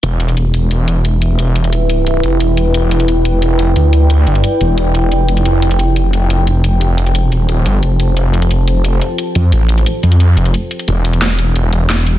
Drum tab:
HH |x-xxx-x-x-x-x-x-|x-xxx-x-x-x-x-x-|x-xxx-x-x-x-x-x-|x-xxx-x-x-x-x-xx|
SD |----------------|----------------|----------------|----------------|

HH |x-xxx-x-x-x-x-x-|x-xxx-x-x-x-x-x-|x-xxx-x-x-x-x-x-|x-xxx-xxx-xxx-xx|
SD |----------------|----------------|----------------|----------------|

HH |x-xxx-x-x-x-x-x-|
SD |----o-------o---|